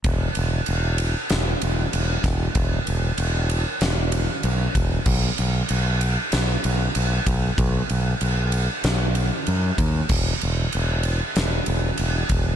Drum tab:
CC |--------|--------|x-------|--------|
RD |xxxxxxxx|xxxxxxxx|-xxxxxxx|xxxxxxxx|
SD |----o--o|----o---|----o---|----o---|
BD |o------o|o------o|o------o|o------o|

CC |x-------|
RD |-xxxxxxx|
SD |----o---|
BD |o------o|